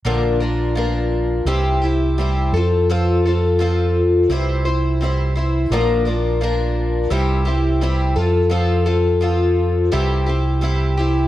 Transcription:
X:1
M:4/4
L:1/8
Q:1/4=85
K:Cmix
V:1 name="Twelve-string acoustic guitar"
[B,,D,F,B,DB] [F,B,DB] [F,B,DB]2 [C,G,CEG] [CEG] [G,CEG] [CFA] | [F,CFA] [CFA] [F,CFA]2 [C,G,CEc] [CEc] [G,CEc] [CEc] | [B,,D,F,B,DB] [F,B,DB] [F,B,DB]2 [C,G,CEG] [CEG] [G,CEG] [CFA] | [F,CFA] [CFA] [F,CFA]2 [C,G,CEG] [CEG] [G,CEG] [CEG] |]
V:2 name="Fingered electric bass" clef=bass
B,,,4 C,,3 F,,- | F,,4 C,,4 | B,,,4 C,,3 F,,- | F,,4 C,,4 |]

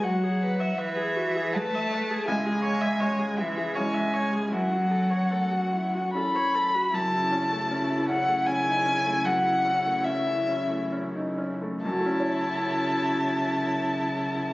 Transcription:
X:1
M:3/4
L:1/16
Q:1/4=77
K:F#m
V:1 name="Violin"
f4 e4 a4 | g6 e2 g4 | f8 b4 | a6 f2 g4 |
f4 e4 z4 | a12 |]
V:2 name="Viola"
F G B e B G F G B e B G | E G c e c G E G c e c G | E F A c A F E F A c A F | E12- |
E8- E3 z | E12 |]
V:3 name="Felt piano"
[B,E]12 | C,,4 G,4 [CE]4 | F,,4 A,4 [CE]4 | F,, E C A, C E C A, C ^D C A, |
F,, E C A, C E C A, C ^D C A, | [F,,F,A,CEc]12 |]
V:4 name="Cello" clef=bass
F,4 E,4 A,4 | G,6 E,2 G,4 | F,8 z4 | C,12- |
C,8- C,3 z | C,12 |]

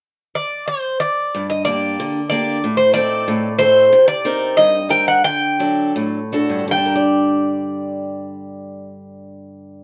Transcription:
X:1
M:2/4
L:1/16
Q:1/4=91
K:Gm
V:1 name="Bouzouki"
z2 d2 c2 d2- | d e d4 d2- | d c d4 c2- | c d3 e2 g ^f |
g4 z4 | g8- | g8 |]
V:2 name="Steel-string acoustic guitar"
z8 | G,,2 [B,DG]2 D,2 [B,DG]2 | A,,2 [CEA]2 A,,2 [CEA]2 | C,2 [CEB]2 G,,2 [CEB]2 |
D,2 [^F,DA]2 A,,2 [D^FA]2 | [G,,D,G,DBd]8- | [G,,D,G,DBd]8 |]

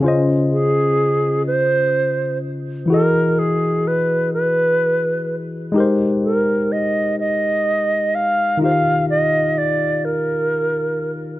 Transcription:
X:1
M:6/8
L:1/8
Q:3/8=42
K:Ab
V:1 name="Alto flute"
z A2 c2 z | B ^G =B B2 z | z B e e2 f | f e =d B2 z |]
V:2 name="Tine electric piano"
[D,DFce]6 | [=E,=E^F^G^d]6 | [A,EGBc]6 | [E,EFGcf]6 |]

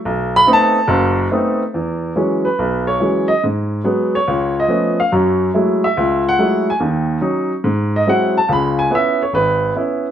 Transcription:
X:1
M:4/4
L:1/8
Q:"Swing" 1/4=142
K:E
V:1 name="Grand piano"
z b a3 z3 | z3 B2 c2 d | z3 c2 d2 ^e | z3 e2 f2 g |
z4 z d f a | b g e c B2 z2 |]
V:2 name="Grand piano" clef=bass
B,,,2 [A,B,=CD] z [F,,,F,,]2 [A,B,CD] z | E,,2 [E,F,G,C] z B,,,2 [E,F,G,C] z | G,,2 [F,G,B,] z C,,2 [^E,A,B,C] z | [F,,F,]2 [F,G,A,E] z C,,2 [F,G,A,E] z |
[D,,D,]2 [F,CD] z G,,2 [F,G,^B,E] z | [C,,C,]2 [B,CE] z G,,,2 [B,CE] z |]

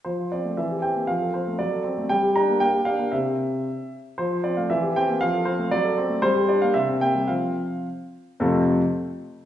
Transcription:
X:1
M:2/4
L:1/16
Q:1/4=116
K:F
V:1 name="Grand piano"
c2 d2 e2 g2 | f2 c2 d4 | g2 b2 g2 f2 | e6 z2 |
c2 d f e2 g2 | f2 c2 d4 | c2 d f e2 g2 | f4 z4 |
[F,,C,A,CFA]2 z6 |]
V:2 name="Grand piano"
F, F C A, E, G C B, | F, A C A, ^F, A C A, | G, G D B, B, G D B, | [C,CG]4 z4 |
F, F C A, E, G C B, | F, A C A, ^F, A C A, | G, G D B, C, C B, G, | [F,CF]4 z4 |
z8 |]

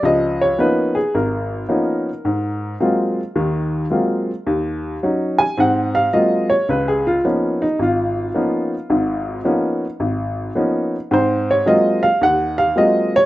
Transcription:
X:1
M:4/4
L:1/8
Q:"Swing" 1/4=108
K:Abmix
V:1 name="Upright piano"
e d _c A B4- | B2 z6 | z3 a g f e d | (3_c A F z E F4- |
F2 z6 | c d e f g f e d |]
V:2 name="Upright piano"
[D,,F,]2 [F,B,_CDE] z A,,,2 [F,B,CDE] z | A,,2 [G,A,B,CF] z [E,,E,]2 [G,A,B,CF] z | E,,2 [G,DE] z [A,,C]2 [G,A,B,CF] z | D,,2 [F,B,_CDE] z A,,,2 [F,B,CDE] z |
[A,,,A,,]2 [F,B,_CDE] z A,,,2 [F,B,CDE] z | [A,,C]2 [G,A,B,CF] z E,,2 [G,A,B,CF] z |]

